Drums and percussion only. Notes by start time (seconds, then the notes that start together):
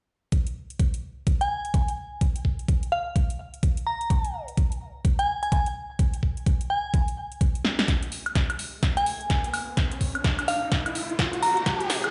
0.32 kick, closed hi-hat
0.47 closed hi-hat
0.70 closed hi-hat
0.80 kick, closed hi-hat
0.94 closed hi-hat
1.27 kick, closed hi-hat
1.41 closed hi-hat
1.65 closed hi-hat
1.74 kick, closed hi-hat
1.88 closed hi-hat
2.21 kick, closed hi-hat
2.36 closed hi-hat
2.45 kick
2.59 closed hi-hat
2.68 kick, closed hi-hat
2.83 closed hi-hat
3.16 kick, closed hi-hat
3.30 closed hi-hat
3.54 closed hi-hat
3.63 kick, closed hi-hat
3.77 closed hi-hat
4.01 closed hi-hat
4.10 kick, closed hi-hat
4.25 closed hi-hat
4.48 closed hi-hat
4.57 kick, closed hi-hat
4.72 closed hi-hat
5.05 kick, closed hi-hat
5.19 closed hi-hat
5.43 closed hi-hat
5.52 kick, closed hi-hat
5.66 closed hi-hat
5.99 kick, closed hi-hat
6.14 closed hi-hat
6.23 kick
6.37 closed hi-hat
6.46 kick, closed hi-hat
6.61 closed hi-hat
6.94 kick, closed hi-hat
7.08 closed hi-hat
7.32 closed hi-hat
7.41 kick, closed hi-hat
7.55 closed hi-hat
7.65 snare
7.79 snare, closed hi-hat
7.88 kick, snare, closed hi-hat
8.03 closed hi-hat
8.12 open hi-hat
8.26 closed hi-hat, high woodblock
8.35 kick, snare, closed hi-hat
8.50 closed hi-hat, high woodblock
8.59 open hi-hat
8.83 kick, snare, closed hi-hat
8.97 closed hi-hat
9.06 open hi-hat
9.21 closed hi-hat
9.30 kick, snare, closed hi-hat
9.44 closed hi-hat
9.54 open hi-hat, high woodblock
9.77 kick, snare, closed hi-hat
9.92 closed hi-hat
10.01 kick, open hi-hat
10.15 closed hi-hat, high woodblock
10.24 kick, snare, closed hi-hat
10.39 closed hi-hat, high woodblock
10.48 open hi-hat
10.72 kick, snare, closed hi-hat
10.86 closed hi-hat, high woodblock
10.95 open hi-hat
11.10 closed hi-hat
11.19 kick, snare, closed hi-hat
11.33 closed hi-hat
11.43 open hi-hat
11.57 closed hi-hat
11.66 kick, snare, closed hi-hat
11.80 closed hi-hat
11.90 snare, open hi-hat
12.04 closed hi-hat, high woodblock